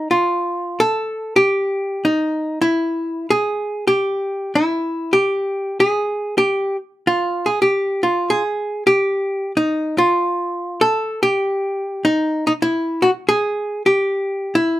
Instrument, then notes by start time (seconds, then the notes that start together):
hollow-body jazz guitar
0.11 F4
0.80 A4
1.36 G4
2.05 D#4
2.62 E4
3.30 G#4
3.87 G4
4.55 E4
5.13 G4
5.80 G#4
6.38 G4
7.07 F4
7.46 G#4
7.62 G4
8.03 F4
8.30 G#4
8.87 G4
9.57 D#4
9.98 F4
10.81 A4
11.23 G4
12.05 D#4
12.47 D#4
12.62 E4
13.02 F#4
13.29 G#4
13.86 G4
14.55 E4